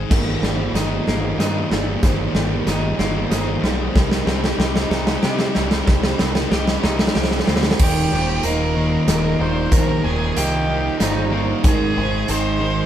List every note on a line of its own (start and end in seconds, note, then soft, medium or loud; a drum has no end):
0.00 0.12 G#3 medium
0.00 1.07 C4 medium
0.00 0.75 D#4 medium
0.00 3.93 D#4 medium
0.00 0.11 C5 medium
0.00 3.93 G5 medium
0.04 0.12 G#2 medium
0.04 0.13 D#3 medium
0.11 0.36 G1 medium
0.11 1.72 D#2 medium
0.11 0.19 D#2 medium
0.11 0.19 A#2 medium
0.11 3.93 A#4 medium
0.11 0.44 A#4 medium
0.11 7.76 C5 medium
0.11 kick loud
0.11 snare medium
0.11 crash medium
0.19 0.26 D#2 medium
0.19 0.27 A#2 medium
0.26 0.34 D#2 medium
0.26 0.35 A#2 medium
0.34 0.41 D#2 medium
0.34 0.42 A#2 medium
0.41 0.68 G1 medium
0.41 0.49 D#2 medium
0.41 0.50 A#2 medium
0.41 1.70 G3 medium
0.41 0.76 C5 medium
0.41 snare medium
0.50 0.57 D#2 medium
0.50 0.57 A#2 medium
0.57 0.64 D#2 medium
0.57 0.65 A#2 medium
0.64 0.72 D#2 medium
0.64 0.74 A#2 medium
0.73 0.99 G1 medium
0.73 0.79 D#2 medium
0.73 0.80 A#2 medium
0.73 1.39 D#4 medium
0.73 1.38 D#5 medium
0.73 snare medium
0.73 closed hi-hat medium
0.80 0.87 D#2 medium
0.80 0.87 A#2 medium
0.87 0.94 D#2 medium
0.87 0.95 A#2 medium
0.95 1.02 D#2 medium
0.95 1.04 A#2 medium
1.03 1.10 D#2 medium
1.03 1.10 A#2 medium
1.07 1.32 G1 medium
1.07 1.18 A#2 medium
1.07 2.68 A#3 medium
1.07 snare medium
1.11 1.17 D#2 medium
1.18 1.25 D#2 medium
1.18 1.25 A#2 medium
1.25 1.32 D#2 medium
1.25 1.33 A#2 medium
1.32 1.40 D#2 medium
1.32 1.41 A#2 medium
1.38 1.47 D#2 medium
1.38 1.64 G2 medium
1.38 1.49 A#2 medium
1.38 2.67 D#4 medium
1.38 1.72 D#5 medium
1.38 snare medium
1.38 closed hi-hat medium
1.47 1.55 D#2 medium
1.47 1.56 A#2 medium
1.56 1.63 D#2 medium
1.56 1.64 A#2 medium
1.63 1.70 D#2 medium
1.63 1.72 A#2 medium
1.71 1.96 G1 medium
1.71 1.78 D#2 medium
1.71 1.79 A#2 medium
1.71 2.34 G3 medium
1.71 2.04 D5 medium
1.71 snare medium
1.78 1.86 D#2 medium
1.78 1.87 A#2 medium
1.87 1.93 D#2 medium
1.87 1.95 A#2 medium
1.93 2.01 D#2 medium
1.93 2.03 A#2 medium
2.03 2.28 G1 medium
2.03 2.10 D#2 medium
2.03 3.64 D#2 medium
2.03 2.11 A#2 medium
2.03 2.36 C5 medium
2.03 kick loud
2.03 snare medium
2.03 closed hi-hat medium
2.10 2.17 D#2 medium
2.10 2.19 A#2 medium
2.18 2.25 D#2 medium
2.18 2.27 A#2 medium
2.26 2.32 D#2 medium
2.26 2.35 A#2 medium
2.33 2.59 G1 medium
2.33 2.40 D#2 medium
2.33 2.43 A#2 medium
2.33 3.61 G3 medium
2.33 2.68 A#4 medium
2.33 snare medium
2.41 2.49 D#2 medium
2.41 2.50 A#2 medium
2.49 2.56 D#2 medium
2.49 2.58 A#2 medium
2.56 2.64 D#2 medium
2.56 2.65 A#2 medium
2.65 2.92 G1 medium
2.65 2.71 D#2 medium
2.65 2.73 A#2 medium
2.65 3.30 D#4 medium
2.65 3.32 D#5 medium
2.65 snare medium
2.65 closed hi-hat medium
2.72 2.79 D#2 medium
2.72 2.80 A#2 medium
2.79 2.87 D#2 medium
2.79 2.88 A#2 medium
2.88 2.94 D#2 medium
2.88 2.95 A#2 medium
2.94 3.02 D#2 medium
2.94 3.03 A#2 medium
2.94 3.96 A#3 medium
2.99 3.24 G1 medium
2.99 snare medium
3.03 3.10 D#2 medium
3.03 3.11 A#2 medium
3.10 3.18 D#2 medium
3.10 3.19 A#2 medium
3.19 3.26 D#2 medium
3.19 3.25 A#2 medium
3.26 3.33 D#2 medium
3.26 3.33 A#2 medium
3.30 3.56 G1 medium
3.30 3.41 D#2 medium
3.30 4.58 D#4 medium
3.30 3.96 C5 medium
3.30 snare medium
3.30 closed hi-hat medium
3.35 3.41 A#2 medium
3.41 3.49 D#2 medium
3.41 3.49 A#2 medium
3.50 3.57 D#2 medium
3.50 3.57 A#2 medium
3.57 3.64 D#2 medium
3.57 3.65 A#2 medium
3.62 3.88 B1 medium
3.62 3.72 D#2 medium
3.62 3.73 A#2 medium
3.62 4.26 G3 medium
3.62 snare medium
3.73 3.79 D#2 medium
3.73 3.80 A#2 medium
3.80 3.87 D#2 medium
3.80 3.88 A#2 medium
3.88 3.96 D#2 medium
3.88 3.95 A#2 medium
3.94 4.20 C2 medium
3.94 5.55 C3 medium
3.94 4.03 C3 medium
3.94 4.03 G3 medium
3.94 7.76 D#4 medium
3.94 7.77 G4 medium
3.94 4.28 A#4 medium
3.94 7.77 G5 medium
3.94 kick loud
3.94 snare loud
4.03 4.10 C3 medium
4.03 4.11 G3 medium
4.10 4.18 C3 medium
4.10 4.19 G3 medium
4.10 snare medium
4.19 4.26 C3 medium
4.19 4.27 G3 medium
4.26 4.52 C2 medium
4.26 4.34 C3 medium
4.26 4.33 G3 medium
4.26 5.54 C4 medium
4.26 4.60 C5 medium
4.26 snare loud
4.33 4.42 C3 medium
4.33 4.41 G3 medium
4.42 4.49 C3 medium
4.42 4.49 G3 medium
4.42 snare loud
4.49 4.55 C3 medium
4.49 4.57 G3 medium
4.56 4.84 C2 medium
4.56 4.63 C3 medium
4.56 4.65 G3 medium
4.56 5.21 G4 medium
4.56 5.22 D#5 medium
4.60 snare loud
4.66 4.71 C3 medium
4.66 4.72 G3 medium
4.72 4.79 C3 medium
4.72 4.79 G3 medium
4.76 snare loud
4.80 4.86 C3 medium
4.80 4.87 G3 medium
4.87 5.16 C2 medium
4.87 4.94 C3 medium
4.87 4.94 G3 medium
4.87 6.51 D#4 medium
4.91 5.02 G3 medium
4.91 snare loud
4.96 5.03 C3 medium
5.02 5.10 C3 medium
5.02 5.10 G3 medium
5.07 5.18 C3 medium
5.07 snare loud
5.11 5.18 G3 medium
5.19 5.25 C3 medium
5.19 5.26 G3 medium
5.19 6.50 G4 medium
5.23 5.49 C3 loud
5.23 5.33 C3 medium
5.23 5.56 D#5 medium
5.23 snare loud
5.27 5.34 G3 medium
5.33 5.41 C3 medium
5.33 5.41 G3 medium
5.39 5.49 C3 medium
5.39 5.48 G3 medium
5.39 snare medium
5.49 5.56 C3 medium
5.49 5.56 G3 medium
5.54 5.81 C2 medium
5.54 5.64 C3 medium
5.54 5.64 G3 medium
5.54 6.18 C4 medium
5.54 5.88 D5 medium
5.54 snare loud
5.64 5.72 C3 medium
5.64 5.72 G3 medium
5.71 5.79 C3 medium
5.71 5.80 G3 medium
5.71 snare loud
5.79 5.87 C3 medium
5.79 5.88 G3 medium
5.86 6.13 C2 medium
5.86 7.47 C3 medium
5.86 5.96 C3 medium
5.86 5.97 G3 loud
5.86 6.20 C5 medium
5.86 kick loud
5.86 snare loud
5.96 6.03 C3 medium
5.96 6.04 G3 medium
6.03 6.11 C3 medium
6.03 6.11 G3 medium
6.03 snare loud
6.11 6.19 C3 medium
6.11 6.19 G3 medium
6.19 6.45 C2 medium
6.19 6.26 C3 medium
6.19 6.27 G3 medium
6.19 7.46 C4 medium
6.19 6.52 A#4 medium
6.19 snare loud
6.27 6.34 C3 medium
6.27 6.34 G3 medium
6.34 6.42 C3 medium
6.34 6.42 G3 medium
6.34 snare loud
6.42 6.50 C3 medium
6.42 6.49 G3 medium
6.50 6.76 C2 medium
6.50 6.57 C3 medium
6.50 6.57 G3 medium
6.50 7.13 G4 medium
6.50 7.16 D#5 medium
6.50 snare loud
6.57 6.64 C3 medium
6.57 6.65 G3 medium
6.65 6.72 C3 medium
6.65 6.72 G3 medium
6.65 snare loud
6.73 6.80 C3 medium
6.73 6.80 G3 medium
6.80 7.09 C2 loud
6.80 6.88 C3 medium
6.80 6.87 G3 loud
6.80 7.80 D#4 medium
6.80 snare loud
6.88 6.95 C3 medium
6.88 6.95 G3 medium
6.95 7.03 C3 medium
6.95 7.03 G3 medium
6.95 snare loud
7.03 7.10 C3 medium
7.03 7.11 G3 medium
7.07 7.19 C3 medium
7.07 snare loud
7.12 7.19 G3 medium
7.12 7.79 G4 medium
7.12 7.80 C5 medium
7.12 snare loud
7.16 7.41 C2 medium
7.16 7.27 C3 medium
7.16 7.27 G3 medium
7.24 7.35 C3 medium
7.24 7.35 G3 medium
7.24 snare loud
7.31 7.43 G3 medium
7.31 snare loud
7.36 7.42 C3 medium
7.36 snare medium
7.42 7.50 C3 medium
7.42 7.49 G3 medium
7.47 7.73 D2 medium
7.47 7.57 G3 medium
7.47 7.80 C4 medium
7.47 snare loud
7.51 7.57 C3 medium
7.56 7.64 C3 medium
7.56 7.65 G3 medium
7.56 snare loud
7.63 7.72 C3 medium
7.63 7.72 G3 medium
7.63 snare loud
7.71 7.80 C3 medium
7.71 7.80 G3 medium
7.71 snare loud
7.79 8.06 D#1 medium
7.79 9.40 D#2 medium
7.79 8.11 D#2 loud
7.79 8.11 A#2 loud
7.79 8.12 D#3 loud
7.79 11.60 D#4 medium
7.79 8.45 G4 medium
7.79 8.12 A#4 loud
7.79 11.61 A#4 medium
7.79 11.61 C5 medium
7.79 12.86 G5 medium
7.79 kick loud
7.79 crash loud
8.12 8.38 D#1 loud
8.12 8.44 D#2 medium
8.12 8.44 A#2 medium
8.12 8.45 D#3 medium
8.12 8.44 C5 medium
8.43 8.96 D#1 medium
8.43 8.76 D#2 loud
8.43 8.76 A#2 loud
8.43 8.76 D#3 loud
8.43 9.38 A#3 medium
8.43 9.07 A#4 medium
8.43 9.07 D#5 medium
8.43 closed hi-hat medium
8.75 9.07 D#2 medium
8.75 9.08 A#2 loud
8.75 10.36 D#3 medium
8.75 9.08 D#3 loud
9.07 9.34 D#1 medium
9.07 9.39 D#2 medium
9.07 9.40 A#2 loud
9.07 9.40 D#3 loud
9.07 9.42 A#4 medium
9.07 9.40 D#5 medium
9.07 snare medium
9.07 closed hi-hat medium
9.39 9.66 D#1 medium
9.39 9.71 D#2 loud
9.39 9.72 A#2 loud
9.39 9.72 D#3 loud
9.39 10.35 A#3 medium
9.39 9.73 C5 medium
9.39 9.72 D5 medium
9.71 9.98 A#1 medium
9.71 11.32 D#2 medium
9.71 10.03 D#2 medium
9.71 10.04 A#2 loud
9.71 10.04 D#3 loud
9.71 10.05 A#4 medium
9.71 10.05 C5 medium
9.71 kick loud
9.71 closed hi-hat medium
10.03 10.30 D#1 loud
10.03 10.36 D#2 medium
10.03 10.37 A#2 medium
10.03 10.36 D#3 medium
10.03 10.38 G#4 medium
10.03 10.36 A#4 medium
10.36 10.89 C2 medium
10.36 10.67 D#2 loud
10.36 10.68 A#2 loud
10.36 10.68 D#3 loud
10.36 11.30 A#3 medium
10.36 10.99 G4 medium
10.36 11.00 D#5 loud
10.36 closed hi-hat loud
10.67 10.99 D#2 medium
10.67 10.99 A#2 loud
10.67 11.63 D#3 medium
10.67 11.00 D#3 loud
10.99 11.53 G1 medium
10.99 11.31 D#2 medium
10.99 11.31 A#2 medium
10.99 11.32 D#3 loud
10.99 11.67 G3 medium
10.99 11.45 D#4 medium
10.99 11.65 C5 medium
10.99 snare loud
10.99 closed hi-hat medium
11.32 11.62 D#2 medium
11.32 11.62 A#2 loud
11.32 11.63 D#3 loud
11.32 11.64 A#3 medium
11.64 11.90 G#1 medium
11.64 12.86 G#2 medium
11.64 11.96 G#2 loud
11.64 11.96 D#3 loud
11.64 11.97 G#3 loud
11.64 12.86 D#4 medium
11.64 12.31 G#4 loud
11.64 12.86 G#4 medium
11.64 11.97 A#4 loud
11.64 12.86 C5 medium
11.64 kick loud
11.64 closed hi-hat medium
11.96 12.23 G#1 loud
11.96 12.29 G#2 medium
11.96 12.28 D#3 loud
11.96 12.30 G#3 medium
11.96 12.29 C5 medium
12.28 12.81 G#1 medium
12.28 12.59 G#2 medium
12.28 12.59 D#3 loud
12.28 12.60 G#3 loud
12.28 12.86 C4 medium
12.28 12.86 C5 loud
12.28 12.86 D#5 medium
12.28 closed hi-hat medium
12.60 12.86 G#2 medium
12.60 12.86 D#3 medium
12.60 12.86 D#3 loud
12.60 12.86 G#3 loud